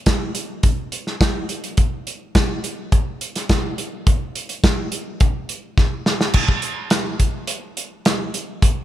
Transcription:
0.06 kick loud
0.06 snare loud
0.06 closed hi-hat medium
0.35 closed hi-hat medium
0.63 kick loud
0.63 closed hi-hat medium
0.92 closed hi-hat medium
1.07 snare soft
1.21 kick loud
1.21 snare loud
1.21 closed hi-hat soft
1.49 closed hi-hat medium
1.64 closed hi-hat soft
1.77 kick loud
1.77 closed hi-hat medium
2.07 closed hi-hat medium
2.35 kick loud
2.35 snare loud
2.35 closed hi-hat medium
2.64 closed hi-hat medium
2.92 kick medium
2.92 closed hi-hat medium
3.21 closed hi-hat medium
3.36 snare soft
3.36 closed hi-hat medium
3.49 kick loud
3.49 snare loud
3.49 closed hi-hat medium
3.78 closed hi-hat medium
4.07 kick loud
4.07 closed hi-hat medium
4.35 closed hi-hat medium
4.49 closed hi-hat medium
4.64 kick loud
4.64 snare loud
4.64 closed hi-hat medium
4.92 closed hi-hat medium
5.20 kick loud
5.20 closed hi-hat medium
5.49 closed hi-hat medium
5.78 kick medium
5.78 snare soft
6.06 snare medium
6.21 snare medium
6.33 kick loud
6.33 crash loud
6.48 kick medium
6.62 closed hi-hat medium
6.90 snare loud
6.90 closed hi-hat medium
7.20 kick medium
7.20 closed hi-hat medium
7.47 closed hi-hat medium
7.77 closed hi-hat medium
8.05 snare loud
8.05 closed hi-hat medium
8.34 closed hi-hat medium
8.62 kick loud
8.62 closed hi-hat medium

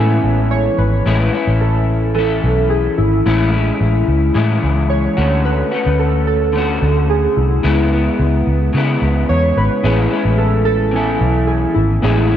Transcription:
0.00 0.18 A2 medium
0.00 1.06 E3 medium
0.00 1.06 G#3 soft
0.00 0.88 B3 medium
0.00 0.88 C#4 medium
0.00 1.07 C#4 medium
0.00 0.89 E4 medium
0.00 1.07 E4 medium
0.00 0.75 A4 medium
0.00 0.89 G#5 medium
0.23 0.67 A1 medium
0.51 0.76 C#5 medium
0.78 1.00 G#1 medium
0.78 1.63 B4 medium
1.06 1.28 A1 loud
1.06 1.33 A2 medium
1.06 1.34 E3 medium
1.06 1.34 G#3 medium
1.06 1.33 C#4 medium
1.06 1.32 E4 medium
1.33 2.18 C#4 soft
1.33 2.16 E4 medium
1.47 2.39 A1 loud
1.61 2.14 A4 medium
2.15 3.25 E3 medium
2.15 3.26 C#4 medium
2.15 2.72 A4 medium
2.20 3.27 E4 medium
2.44 2.87 B1 medium
2.70 2.98 G#4 medium
2.98 3.20 G#1 medium
2.98 4.59 E4 medium
3.26 3.70 A1 loud
3.26 3.53 A2 medium
3.26 3.53 E3 medium
3.26 3.53 G#3 medium
3.26 3.52 C#4 medium
3.26 3.51 E4 medium
3.52 4.34 G#3 soft
3.52 4.36 C#4 soft
3.52 4.35 E4 medium
3.81 4.02 A1 medium
4.08 4.30 C#2 medium
4.34 4.57 A2 loud
4.34 5.17 E3 medium
4.34 5.18 G#3 medium
4.34 5.17 C#4 medium
4.34 5.17 E4 medium
4.63 5.07 C#2 medium
4.90 5.41 C#5 medium
5.17 5.62 D2 medium
5.17 5.73 D3 medium
5.17 5.73 A3 medium
5.17 5.73 C#4 medium
5.17 5.70 F#4 medium
5.45 6.02 B4 loud
5.72 6.54 A3 soft
5.72 6.56 C#4 soft
5.72 6.54 F#4 soft
5.86 6.78 D2 loud
5.99 6.26 A4 medium
6.27 7.06 A4 medium
6.53 7.63 D3 medium
6.53 7.64 A3 medium
6.57 7.64 C#4 medium
6.57 7.65 F#4 medium
6.82 7.26 D2 medium
7.09 7.38 G#4 medium
7.37 7.59 C2 medium
7.37 8.98 E4 medium
7.63 8.08 C#2 loud
7.63 7.91 C#3 medium
7.63 7.92 G#3 medium
7.63 7.92 B3 medium
7.63 7.90 E4 medium
7.92 8.74 G#3 soft
7.92 8.75 B3 soft
7.92 8.78 E4 medium
8.19 8.41 C#2 medium
8.47 8.69 C#2 medium
8.73 9.83 C#3 medium
8.73 8.96 C#3 medium
8.73 9.84 G#3 medium
8.77 9.85 B3 medium
8.77 9.85 E4 medium
9.02 9.24 C#2 medium
9.29 9.51 E2 medium
9.29 9.57 C#5 loud
9.57 9.68 G#1 medium
9.57 10.42 B4 medium
9.83 10.06 A1 loud
9.83 10.11 A2 medium
9.83 10.11 E3 medium
9.83 10.12 G#3 medium
9.83 10.76 B3 medium
9.83 10.76 C#4 medium
9.83 10.11 C#4 medium
9.83 10.76 E4 medium
9.83 10.09 E4 medium
9.83 10.77 G#4 medium
10.10 10.95 G#3 soft
10.10 10.95 C#4 soft
10.10 10.93 E4 medium
10.25 11.17 A1 medium
10.38 10.64 A4 medium
10.65 11.51 A4 loud
10.91 12.02 E3 medium
10.91 11.85 B3 medium
10.91 11.86 C#4 medium
10.91 11.86 E4 medium
10.96 12.04 C#4 medium
10.96 12.03 E4 medium
10.96 11.87 G#5 medium
11.21 11.65 B1 medium
11.47 11.73 G#4 medium
11.75 11.98 G#1 medium
11.75 12.37 E4 medium
12.02 12.37 A1 medium
12.02 12.30 A2 medium
12.02 12.31 E3 medium
12.02 12.31 G#3 medium
12.02 12.37 B3 medium
12.02 12.37 C#4 medium
12.02 12.30 C#4 medium
12.02 12.37 E4 medium
12.02 12.28 E4 medium
12.02 12.37 G#4 medium
12.29 12.37 G#3 soft
12.29 12.37 C#4 soft
12.29 12.37 E4 soft

